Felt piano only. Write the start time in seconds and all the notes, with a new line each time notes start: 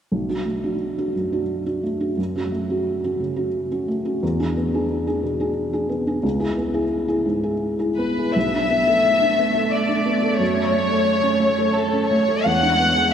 0.12 B1
0.29 D4 F#4
0.45 A3
0.64 D4 F#4
0.98 D4 F#4
1.15 F#2
1.32 D4 F#4
1.66 D4 F#4
1.83 A3
2.00 D4 F#4
2.17 F#2
2.36 C#4 F#4
2.52 A3
2.69 C#4 F#4
3.04 C#4 F#4
3.20 C#3
3.36 C#4 F#4
3.71 C#4 F#4
3.88 A3
4.05 C#4 F#4
4.23 E2
4.40 D4 G#4
4.57 B3
4.74 D4 G#4
5.07 D4 G#4
5.23 B2
5.40 D4 G#4
5.73 D4 G#4
5.89 B3
6.07 D4 G#4
6.23 C#2
6.39 E4 G#4
6.57 B3
6.74 E4 G#4
7.08 E4 G#4
7.25 G#2
7.43 E4 G#4
7.79 E4 G#4
7.98 B3
8.18 E4 G#4
8.36 B1
8.54 D4
8.71 B3
8.87 A4
9.22 D4
9.39 B3
9.55 A4
9.89 D4
10.06 B3
10.22 A4
10.39 F#2
10.54 C#4
10.72 A3
10.89 A4
11.23 C#4
11.40 A3
11.58 A4
11.93 C#4
12.11 A3
12.28 A4
12.46 E2
12.63 D4
12.79 B3
12.97 G#4